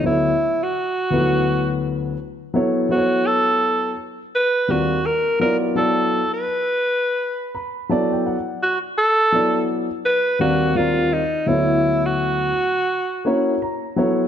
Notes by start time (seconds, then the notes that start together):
0.03 D2 F#3 B3 E4 A4 C#5
0.63 F#4
1.10 D2 F3 B3 E4 A4 B4
1.18 F#3
2.54 F#3 B3 E4 A4 C#5
2.89 F#3 B3 E4 F#4 A4 C5
2.98 C#5
3.27 A4
4.35 B4
4.68 D#2 G3 C4 F4 F#4 A#4 D5
5.06 A#4
5.40 F#3 B3 E4 F4 A#4 D5
5.75 F#3 B3 E4 A4 D5
6.34 B4
7.55 B5
7.89 F#3 B3 E4 A4 D5 A5
8.12 G5
8.26 F#5
8.63 F#4
8.98 A4
9.32 F#3 B3 E4 A4 D5
10.05 B4
10.39 D#2 G3 C4 F#4 A#4 D5 F5
10.75 D#2 G3 C4 F4 A#4 D5
11.13 D#4
11.46 D2 F#3 B3 E4 A4 C#5
12.06 F#4
13.25 A#3 C#4 E4 F#4 C#5
13.62 A#5
13.96 F#3 B3 E4 A4 C#5 F#5